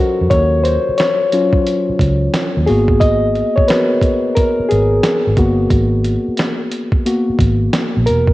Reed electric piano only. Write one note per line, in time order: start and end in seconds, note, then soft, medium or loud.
0.00 1.28 F#3 medium
0.00 1.28 C#4 medium
0.00 1.28 F4 medium
0.00 0.32 F#4 medium
0.00 2.68 A4 medium
0.00 2.69 A#4 medium
0.00 0.64 C5 medium
0.00 0.30 C#5 medium
0.00 2.69 D#5 medium
0.30 0.46 C#5 loud
0.64 0.79 C5 medium
0.98 2.63 C#5 medium
1.33 2.29 F#3 medium
1.33 2.30 C#4 medium
1.33 2.30 F4 medium
2.66 3.64 A#3 medium
2.66 3.65 B3 soft
2.66 3.65 F#4 medium
2.66 2.98 G#4 medium
3.00 3.57 D#5 loud
3.56 3.68 C#5 medium
3.68 3.99 B3 soft
3.68 3.99 F#4 medium
3.68 3.99 A#4 soft
3.68 4.37 B4 medium
4.35 4.70 A#4 medium
4.69 5.32 G#4 medium
5.37 6.34 A#3 medium
5.37 6.34 B3 soft
5.37 6.35 F#4 medium
7.06 7.36 A#3 soft
7.06 7.36 B3 soft
7.06 7.36 F#4 medium
8.06 8.33 A#4 medium